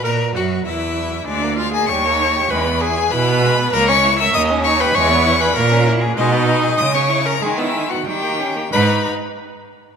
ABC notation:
X:1
M:2/4
L:1/16
Q:1/4=98
K:G#m
V:1 name="Violin"
a2 f2 e4 | =d2 ^e g c'4 | b2 g2 b4 | a c'2 e' d'2 c' b |
c'3 b a2 z2 | d4 d' c'2 a | g e2 f =g4 | b2 z6 |]
V:2 name="Viola"
A2 F2 E4 | =D2 ^E G c4 | B2 G2 B4 | A c2 e d2 c B |
c3 B A2 z2 | D4 d c2 A | G E2 F =G4 | B2 z6 |]
V:3 name="Violin"
A2 F2 E4 | G, A, G, A, =G, A, D =G | G, B, E G E B, G, B, | A, C E A A, C D =G |
G, B, E G A, C E G | G, B, D G G, C E C | G, B, G, B, =G, A, C A, | D2 z6 |]
V:4 name="Cello" clef=bass
A,,2 F,,2 E,,4 | =D,,4 ^D,,4 | E,,4 B,,4 | C,,4 D,,4 |
E,,4 A,,4 | B,,4 C,4 | D,4 D,4 | G,,2 z6 |]